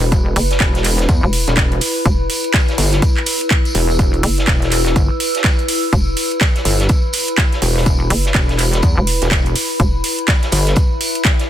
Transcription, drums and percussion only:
0.12 kick loud
0.12 closed hi-hat medium
0.12 tambourine medium
0.36 open hi-hat loud
0.36 tambourine medium
0.51 snare medium
0.51 closed hi-hat soft
0.60 kick loud
0.60 snare loud
0.60 clap loud
0.60 closed hi-hat medium
0.60 tambourine medium
0.75 snare medium
0.75 closed hi-hat soft
0.85 clap soft
0.85 open hi-hat loud
0.85 tambourine medium
0.99 snare medium
0.99 closed hi-hat medium
1.09 kick loud
1.09 closed hi-hat medium
1.09 tambourine medium
1.33 open hi-hat loud
1.33 tambourine medium
1.47 snare soft
1.47 closed hi-hat medium
1.57 kick loud
1.57 snare loud
1.57 clap loud
1.57 closed hi-hat medium
1.57 tambourine loud
1.72 closed hi-hat soft
1.81 open hi-hat loud
1.81 tambourine medium
2.06 kick loud
2.06 closed hi-hat medium
2.06 tambourine loud
2.30 open hi-hat loud
2.30 tambourine medium
2.44 closed hi-hat soft
2.54 kick loud
2.54 snare loud
2.54 clap loud
2.54 closed hi-hat medium
2.54 tambourine medium
2.68 snare medium
2.68 closed hi-hat soft
2.78 open hi-hat loud
2.78 tambourine medium
2.92 snare soft
2.92 closed hi-hat medium
3.02 kick loud
3.02 closed hi-hat medium
3.02 tambourine medium
3.17 clap soft
3.26 open hi-hat loud
3.26 tambourine medium
3.41 closed hi-hat medium
3.51 kick loud
3.51 clap loud
3.51 closed hi-hat medium
3.51 tambourine medium
3.65 closed hi-hat soft
3.65 tambourine medium
3.75 open hi-hat loud
3.90 tambourine medium
3.99 kick loud
3.99 closed hi-hat medium
4.14 closed hi-hat soft
4.23 open hi-hat loud
4.23 tambourine medium
4.38 snare medium
4.38 closed hi-hat soft
4.47 kick loud
4.47 snare loud
4.47 clap loud
4.47 closed hi-hat medium
4.47 tambourine medium
4.62 snare medium
4.62 closed hi-hat soft
4.72 clap soft
4.72 open hi-hat loud
4.72 tambourine medium
4.86 snare medium
4.86 closed hi-hat medium
4.96 kick loud
4.96 closed hi-hat medium
4.96 tambourine medium
5.20 open hi-hat loud
5.20 tambourine medium
5.35 snare soft
5.35 closed hi-hat medium
5.44 kick loud
5.44 snare loud
5.44 clap loud
5.44 closed hi-hat medium
5.44 tambourine medium
5.59 closed hi-hat soft
5.68 open hi-hat loud
5.68 tambourine medium
5.93 kick loud
5.93 closed hi-hat medium
5.93 tambourine loud
6.16 open hi-hat loud
6.16 tambourine medium
6.31 closed hi-hat soft
6.41 kick loud
6.41 snare loud
6.41 clap loud
6.41 closed hi-hat medium
6.41 tambourine medium
6.56 snare medium
6.56 closed hi-hat soft
6.65 open hi-hat loud
6.65 tambourine medium
6.80 snare medium
6.80 closed hi-hat medium
6.89 kick loud
6.89 closed hi-hat medium
6.89 tambourine medium
7.13 open hi-hat loud
7.13 tambourine medium
7.28 closed hi-hat medium
7.38 kick loud
7.38 snare loud
7.38 clap loud
7.38 closed hi-hat medium
7.38 tambourine medium
7.52 snare soft
7.52 closed hi-hat soft
7.62 open hi-hat loud
7.62 tambourine medium
7.76 snare soft
7.86 kick loud
7.86 closed hi-hat medium
7.86 tambourine loud
8.10 open hi-hat loud
8.10 tambourine medium
8.25 snare medium
8.25 closed hi-hat soft
8.34 kick loud
8.34 snare loud
8.34 clap loud
8.34 closed hi-hat medium
8.34 tambourine loud
8.49 snare medium
8.49 closed hi-hat soft
8.59 clap soft
8.59 open hi-hat loud
8.59 tambourine medium
8.73 snare medium
8.73 closed hi-hat medium
8.82 kick loud
8.82 closed hi-hat medium
8.82 tambourine medium
9.07 open hi-hat loud
9.07 tambourine medium
9.22 snare soft
9.22 closed hi-hat medium
9.31 kick loud
9.31 snare loud
9.31 clap loud
9.31 closed hi-hat medium
9.31 tambourine loud
9.46 closed hi-hat soft
9.56 open hi-hat loud
9.56 tambourine medium
9.80 kick loud
9.80 closed hi-hat medium
9.80 tambourine medium
10.04 open hi-hat loud
10.04 tambourine medium
10.19 closed hi-hat soft
10.28 kick loud
10.28 snare loud
10.28 clap loud
10.28 closed hi-hat medium
10.28 tambourine medium
10.43 snare medium
10.43 closed hi-hat soft
10.52 open hi-hat loud
10.52 tambourine medium
10.67 snare medium
10.67 closed hi-hat medium
10.76 kick loud
10.76 closed hi-hat medium
10.76 tambourine loud
11.01 open hi-hat loud
11.01 tambourine medium
11.15 closed hi-hat medium
11.24 kick loud
11.24 snare loud
11.24 clap loud
11.24 closed hi-hat medium
11.24 tambourine medium
11.39 snare medium
11.39 closed hi-hat soft

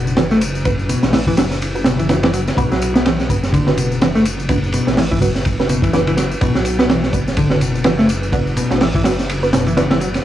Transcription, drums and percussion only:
0.07 tambourine soft
0.17 snare loud
0.17 ride medium
0.17 tambourine soft
0.31 snare soft
0.31 tambourine soft
0.41 ride medium
0.41 tambourine medium
0.55 tambourine soft
0.65 kick loud
0.65 ride medium
0.65 tambourine soft
0.79 tambourine soft
0.89 ride medium
0.89 tambourine medium
1.03 snare medium
1.03 tambourine soft
1.13 snare loud
1.13 open hi-hat medium
1.13 tambourine soft
1.27 kick medium
1.27 tambourine soft
1.37 snare loud
1.37 ride medium
1.37 tambourine medium
1.51 snare soft
1.51 tambourine soft
1.62 ride medium
1.62 tambourine soft
1.76 tambourine soft
1.84 snare loud
1.84 ride medium
1.84 tambourine medium
1.99 ride soft
1.99 tambourine soft
2.09 snare soft
2.09 ride medium
2.09 tambourine soft
2.23 snare loud
2.23 ride medium
2.23 tambourine soft
2.33 ride soft
2.33 tambourine medium
2.48 snare soft
2.48 ride medium
2.48 tambourine soft
2.57 kick loud
2.57 ride medium
2.57 tambourine soft
2.72 snare soft
2.72 tambourine soft
2.82 ride medium
2.82 tambourine medium
2.96 snare medium
2.96 tambourine soft
3.06 snare loud
3.06 ride medium
3.06 tambourine soft
3.20 snare medium
3.20 tambourine soft
3.29 kick medium
3.29 ride medium
3.29 tambourine medium
3.43 snare soft
3.43 tambourine soft
3.53 kick loud
3.53 ride medium
3.53 tambourine soft
3.67 snare medium
3.67 tambourine soft
3.77 ride medium
3.77 tambourine medium
3.92 tambourine soft
4.01 snare loud
4.01 ride medium
4.01 tambourine soft
4.15 snare soft
4.15 tambourine soft
4.25 ride medium
4.25 tambourine medium
4.40 tambourine soft
4.49 kick loud
4.49 ride loud
4.49 tambourine soft
4.64 tambourine soft
4.72 ride medium
4.72 tambourine medium
4.87 snare medium
4.87 tambourine soft
4.97 snare loud
4.97 open hi-hat medium
4.97 tambourine soft
5.12 kick loud
5.12 tambourine soft
5.21 kick medium
5.21 ride medium
5.21 tambourine medium
5.35 snare soft
5.35 tambourine soft
5.45 kick loud
5.45 ride medium
5.45 tambourine soft
5.59 snare soft
5.59 tambourine soft
5.69 ride medium
5.69 tambourine medium
5.82 kick loud
5.82 ride medium
5.82 tambourine soft
5.93 snare soft
5.93 tambourine soft
6.07 ride medium
6.07 tambourine soft
6.17 snare soft
6.17 ride medium
6.17 tambourine medium
6.31 tambourine soft
6.41 kick loud
6.41 ride medium
6.41 tambourine soft
6.55 snare medium
6.55 tambourine soft
6.65 ride medium
6.65 tambourine medium
6.79 snare medium
6.79 tambourine soft
6.90 snare loud
6.90 ride medium
6.90 tambourine soft
7.04 snare medium
7.04 tambourine soft
7.13 kick medium
7.13 ride medium
7.13 tambourine medium
7.28 snare soft
7.28 tambourine soft
7.37 kick loud
7.37 ride loud
7.37 tambourine soft
7.50 snare medium
7.50 tambourine soft
7.61 ride medium
7.61 tambourine medium
7.75 tambourine soft
7.84 snare loud
7.84 ride medium
7.84 tambourine soft
7.99 snare soft
7.99 tambourine soft
8.09 ride medium
8.09 tambourine medium
8.23 tambourine soft
8.32 kick loud
8.32 ride medium
8.32 tambourine soft
8.47 tambourine soft
8.57 ride medium
8.57 tambourine medium
8.71 snare soft
8.71 tambourine soft
8.81 snare loud
8.81 open hi-hat medium
8.81 tambourine soft
8.95 kick loud
8.95 tambourine soft
9.04 snare loud
9.04 ride medium
9.04 tambourine medium
9.19 snare soft
9.19 tambourine soft
9.29 ride medium
9.29 tambourine soft
9.43 tambourine soft
9.53 snare loud
9.53 ride medium
9.53 tambourine medium
9.66 ride soft
9.66 tambourine soft
9.77 snare soft
9.77 ride medium
9.77 tambourine soft
9.91 snare loud
9.91 ride medium
9.91 tambourine soft
10.00 ride soft
10.00 tambourine medium
10.14 snare soft
10.14 ride medium
10.14 tambourine soft

